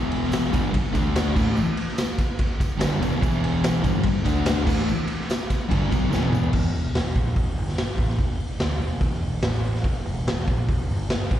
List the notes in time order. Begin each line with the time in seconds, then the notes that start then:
Already playing: E1 E2 B2 E3
0.12 ride
0.23 snare
0.32 snare, ride, tambourine
0.51 G1 G2 D3 G3, kick, ride, tambourine
0.73 muted distorted electric guitar stroke, muted picked electric bass stroke, kick, ride
0.92 D2 D3 A3 D4, kick, ride, tambourine
1.15 snare, ride, tambourine
1.35 A1 A2 E3 A3, kick, tambourine, crash
1.57 tambourine
1.77 ride
1.88 snare
1.98 snare, ride, tambourine
2.18 kick, ride, tambourine
2.39 kick, ride
2.60 kick, ride, tambourine
2.79 G1 G2 D3 G3, snare, ride, tambourine
3.00 E1 E2 B2 E3, ride, tambourine
3.21 E1 E2 B2 E3, kick, ride, tambourine
3.44 ride
3.64 snare, ride, tambourine
3.82 G1 G2 D3 G3, kick, ride, tambourine
4.03 muted distorted electric guitar stroke, muted picked electric bass stroke, kick, ride
4.24 D2 D3 A3 D4, kick, ride, tambourine
4.46 snare, ride, tambourine
4.64 A2 E3 A3, kick, crash
4.68 A1, tambourine
4.89 tambourine
5.08 ride
5.20 snare
5.30 snare, ride, tambourine
5.50 kick, ride, tambourine
5.69 G1 G2 D3 G3, kick, ride
5.88 B1 B2 F#3 B3, kick, ride
5.93 tambourine
6.10 E1 E2 B2 E3, snare, tambourine
6.23 high tom
6.33 mid tom, tambourine
6.44 floor tom
6.53 E1, kick, crash
6.72 E1, open hi-hat
6.95 E1, snare, open hi-hat
7.16 A#1, kick, open hi-hat
7.36 E1, kick, open hi-hat
7.58 G1, open hi-hat
7.68 snare
7.78 muted picked electric bass stroke, snare, open hi-hat
7.97 A1, kick, open hi-hat
8.09 snare
8.19 E1, kick, open hi-hat
8.40 open hi-hat
8.60 D2, snare, open hi-hat
8.81 E1, open hi-hat
9.01 E1, kick, open hi-hat
9.22 open hi-hat
9.42 A1, snare, open hi-hat
9.64 open hi-hat
9.76 snare
9.83 E1, kick, open hi-hat
10.05 E1, open hi-hat
10.27 E1, snare, open hi-hat
10.47 A#1, kick, open hi-hat
10.69 E1, kick, open hi-hat
10.89 G1, open hi-hat
11.10 muted picked electric bass stroke, snare, open hi-hat
11.31 A1, kick, open hi-hat